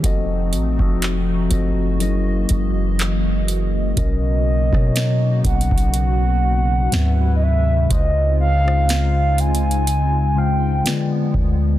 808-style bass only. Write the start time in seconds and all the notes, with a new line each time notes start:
0.04 F1
0.53 A1
0.80 F1
1.51 F#1
2.51 F#1
3.98 B1
4.73 B2
5.44 B1
5.71 B1
6.93 D2
7.91 C#2
11.34 D2